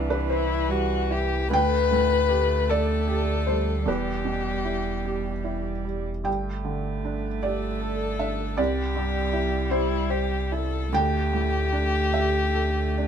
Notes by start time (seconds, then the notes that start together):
Already playing: C2 G2 E3 D4 E4 D5
0.10 B4
0.29 E4 C5
0.69 G3 F#4
1.11 E4 G4
1.51 D2 A3 B4 G5
1.91 A2
2.29 G4
2.69 A4 D5
3.08 G4
3.47 G3 C5
3.86 E1 E2 G3 G4 B4
4.25 B2
4.65 E4
5.05 G4
5.44 E4
5.85 G3
6.24 G1 G2 A3 G5
6.65 D3
7.05 D4
7.43 G4 A4 D5
7.81 A4
8.19 D4 E5
8.57 C2 G3 G4 D5
8.96 G2
9.33 E4
9.71 E4 G4 C5
10.10 G4 C5
10.52 E4 A4
10.93 D2 A3 G4 G5
11.33 A2
11.73 D4
12.13 G4 E5
12.54 A4
12.98 D4 D5